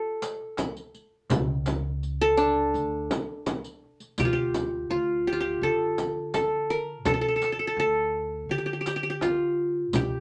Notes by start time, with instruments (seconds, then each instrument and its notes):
Already playing: qanun F4 G4 A4
0.22 riq, darbuka tek
0.41 darbuka ka
0.57 riq, darbuka tek, frame drum
0.76 riq, darbuka ka
0.94 riq
1.30 upright bass C#2, riq, darbuka dum, frame drum
1.66 riq, darbuka tek, frame drum
2.03 riq, darbuka ka
2.21 qanun A4
2.37 qanun D4, riq
2.74 upright bass D2, riq
3.11 riq, darbuka tek, frame drum
3.46 riq, darbuka tek, frame drum
3.64 riq
3.84 darbuka ka
4.00 riq, darbuka ka
4.18 upright bass D2, qanun G4, riq, frame drum, darbuka dum
4.25 qanun F4
4.33 qanun G4
4.54 riq, darbuka tek, frame drum
4.90 upright bass D2, qanun F4
5.27 qanun G4
5.33 qanun F4
5.40 qanun G4
5.62 upright bass D3, qanun A4
5.98 riq, darbuka tek, frame drum
6.34 qanun A4, riq, darbuka tek, frame drum
6.70 qanun A#4
6.89 darbuka ka
7.05 upright bass D2, qanun A4, riq, frame drum, darbuka dum
7.14 qanun A4
7.21 qanun A4
7.28 qanun A4
7.36 qanun A4
7.42 qanun A4, riq, darbuka tek
7.52 qanun A4
7.59 qanun A4
7.67 qanun A4
7.77 upright bass D2, qanun A4, darbuka ka
8.49 upright bass D3, qanun G4
8.58 qanun G4
8.66 qanun G4
8.73 qanun G4
8.81 qanun G4
8.86 qanun G4, riq, darbuka tek
8.96 qanun G4
9.03 qanun G4
9.10 qanun G4
9.21 qanun F4, riq, darbuka tek, frame drum
9.77 darbuka ka
9.93 upright bass D2, qanun G4, riq, frame drum, darbuka dum